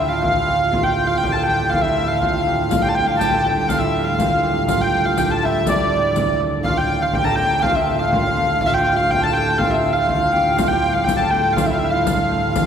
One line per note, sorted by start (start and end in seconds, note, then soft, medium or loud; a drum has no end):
0.00 2.69 D2 medium
0.00 2.69 A2 medium
0.00 2.21 D4 medium
0.00 0.16 E4 medium
0.00 0.83 G4 medium
0.00 1.35 A4 medium
0.09 0.21 F4 medium
0.09 0.22 F5 medium
0.09 0.21 F5 medium
0.22 0.73 F4 medium
0.22 0.68 F5 medium
0.22 0.72 F5 medium
0.22 frame drum medium
0.48 frame drum medium
0.71 1.08 F4 medium
0.71 0.77 F5 medium
0.71 0.83 F5 medium
0.71 frame drum medium
0.83 1.20 G4 medium
0.83 1.07 G5 medium
0.83 0.90 G5 medium
0.98 frame drum soft
1.07 1.71 F4 medium
1.07 1.21 F5 medium
1.07 1.20 F5 medium
1.18 1.46 G4 medium
1.18 1.32 G5 medium
1.18 1.35 G5 medium
1.23 frame drum medium
1.32 3.33 A4 medium
1.32 1.45 A5 medium
1.32 1.46 A5 medium
1.43 2.46 G4 medium
1.43 1.70 G5 medium
1.43 1.73 G5 medium
1.48 frame drum medium
1.70 1.90 F4 medium
1.70 1.83 F5 medium
1.70 1.85 F5 medium
1.70 frame drum medium
1.82 2.15 E4 medium
1.82 2.07 E5 medium
1.82 2.23 E5 medium
2.07 2.22 F4 medium
2.07 2.18 F5 medium
2.18 2.72 F4 medium
2.18 2.70 F5 medium
2.18 2.47 F5 medium
2.18 frame drum medium
2.47 2.84 G4 medium
2.47 frame drum medium
2.69 6.61 D2 medium
2.69 6.61 A2 medium
2.69 3.07 F4 medium
2.69 2.97 F5 medium
2.69 2.82 F5 medium
2.69 riq medium
2.69 frame drum medium
2.82 2.97 G4 medium
2.82 2.89 G5 medium
2.89 2.95 A5 medium
2.95 3.21 G4 medium
2.95 3.07 G5 medium
2.95 3.19 G5 medium
2.95 frame drum soft
3.07 3.71 F4 medium
3.07 3.19 F5 medium
3.17 3.43 G5 medium
3.17 3.42 G5 medium
3.17 3.30 A5 medium
3.17 frame drum medium
3.21 3.47 G4 medium
3.21 riq medium
3.30 5.31 A4 medium
3.30 3.42 A5 medium
3.43 3.69 G5 medium
3.43 frame drum medium
3.48 4.43 G4 medium
3.68 3.90 F4 medium
3.68 3.82 F5 medium
3.68 3.81 F5 medium
3.68 riq medium
3.68 frame drum medium
3.79 4.05 E5 medium
3.79 4.06 E5 medium
3.84 4.14 E4 medium
3.94 frame drum soft
4.04 4.20 F4 medium
4.04 4.18 F5 medium
4.04 4.17 F5 medium
4.18 4.68 F4 medium
4.18 4.67 F5 medium
4.18 4.64 F5 medium
4.18 riq medium
4.18 frame drum medium
4.43 4.81 G4 medium
4.43 frame drum medium
4.67 5.06 F4 medium
4.67 5.02 F5 medium
4.67 4.81 F5 medium
4.67 riq medium
4.67 frame drum medium
4.81 5.20 G4 medium
4.81 5.05 G5 medium
4.93 frame drum soft
5.05 5.51 F4 medium
5.05 5.18 F5 medium
5.18 7.15 G4 medium
5.18 5.32 G5 medium
5.18 5.31 G5 medium
5.18 riq medium
5.18 frame drum medium
5.30 7.24 A4 medium
5.30 5.45 A5 medium
5.43 6.73 E4 medium
5.43 5.69 E5 medium
5.43 5.68 E5 medium
5.66 9.43 D4 medium
5.66 6.41 D5 medium
5.66 6.37 D5 medium
5.66 riq medium
5.66 frame drum medium
6.16 riq medium
6.16 frame drum medium
6.40 frame drum medium
6.63 10.58 D2 medium
6.63 10.57 A2 medium
6.63 6.77 F5 medium
6.63 6.70 F5 medium
6.63 frame drum medium
6.67 7.03 F4 medium
6.77 7.03 G5 medium
6.77 7.02 G5 medium
6.89 frame drum soft
7.01 7.64 F4 medium
7.01 7.16 F5 medium
7.01 7.15 F5 medium
7.13 7.38 G4 medium
7.13 7.37 G5 medium
7.13 7.25 G5 medium
7.13 frame drum medium
7.24 9.25 A4 medium
7.24 7.38 A5 medium
7.24 7.27 A#5 medium
7.35 7.58 G4 medium
7.35 7.60 G5 loud
7.35 7.61 G5 medium
7.35 frame drum medium
7.58 8.77 G4 medium
7.58 7.68 F5 medium
7.58 7.75 F5 loud
7.58 7.63 G5 medium
7.63 8.01 F4 medium
7.63 frame drum medium
7.74 7.99 E5 medium
7.74 8.00 E5 medium
7.88 frame drum soft
7.98 8.15 F4 medium
7.98 8.09 F5 medium
7.98 8.13 F5 medium
8.09 8.57 F5 medium
8.09 8.61 F5 medium
8.09 frame drum medium
8.15 8.63 F4 medium
8.37 frame drum medium
8.60 8.70 F4 medium
8.60 8.65 F5 medium
8.60 8.66 F5 loud
8.60 frame drum medium
8.66 8.69 E5 medium
8.66 9.07 F5 medium
8.66 8.74 F5 loud
8.71 8.98 F4 medium
8.71 8.99 G5 medium
8.78 9.12 G4 medium
8.86 frame drum soft
8.96 9.58 F4 medium
8.96 9.11 F5 medium
9.10 9.35 G4 medium
9.10 9.23 G5 medium
9.10 9.24 G5 medium
9.10 frame drum medium
9.22 11.19 A4 medium
9.22 9.58 A5 medium
9.22 9.36 A5 medium
9.33 10.35 G4 medium
9.33 9.58 G5 medium
9.58 10.08 F4 medium
9.58 9.71 F5 loud
9.58 9.94 F5 medium
9.58 frame drum medium
9.71 9.95 E5 medium
9.93 10.06 F5 medium
9.93 10.02 F5 medium
10.06 10.58 F4 medium
10.06 10.56 F5 medium
10.06 10.34 F5 medium
10.06 frame drum medium
10.32 10.71 G4 medium
10.32 10.59 G5 medium
10.32 frame drum medium
10.56 12.66 D2 medium
10.56 12.66 A2 medium
10.56 11.56 F4 medium
10.56 10.69 F5 medium
10.56 10.94 F5 medium
10.56 riq medium
10.56 frame drum medium
10.68 11.07 G4 medium
10.68 10.94 G5 medium
10.83 frame drum soft
10.93 11.06 F5 medium
10.93 11.07 F5 medium
11.04 11.31 G4 medium
11.04 11.18 G5 medium
11.04 11.58 G5 medium
11.04 frame drum medium
11.09 riq medium
11.17 12.66 A4 medium
11.17 11.31 A5 medium
11.30 12.66 G4 medium
11.30 11.56 G5 medium
11.53 11.75 F4 medium
11.53 11.67 F5 medium
11.53 frame drum medium
11.57 11.71 F5 medium
11.57 riq medium
11.66 11.81 E4 medium
11.66 11.73 E5 medium
11.66 11.81 E5 medium
11.73 11.80 F5 medium
11.79 12.00 E4 medium
11.79 11.93 E5 medium
11.79 11.96 E5 medium
11.79 frame drum soft
11.90 12.07 F4 medium
11.90 12.03 F5 medium
11.90 12.04 F5 medium
12.03 12.56 F4 medium
12.03 12.53 F5 medium
12.03 12.51 F5 medium
12.03 riq medium
12.03 frame drum medium
12.31 frame drum medium
12.53 12.66 F4 medium
12.53 12.66 F5 medium
12.53 riq medium
12.53 frame drum medium